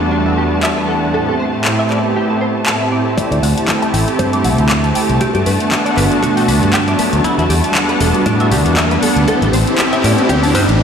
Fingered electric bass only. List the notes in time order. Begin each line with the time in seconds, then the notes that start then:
3.17 muted fingered electric bass stroke
3.31 D2
3.43 D2
3.94 A1
4.19 G2
4.45 C2
4.59 D2
5.09 C2
5.21 muted fingered electric bass stroke
5.35 G2
5.46 G2
5.97 G1
6.23 B2
6.48 D2
6.62 G2
6.99 muted fingered electric bass stroke
7.13 D2
7.24 muted fingered electric bass stroke
7.38 E2
7.50 E2
8.00 E1
8.26 A2
8.51 D2
8.65 E2
9.02 muted fingered electric bass stroke
9.16 D2
9.28 muted fingered electric bass stroke
9.41 A1
9.53 A1
10.04 A2
10.29 D2
10.55 G2
10.69 A1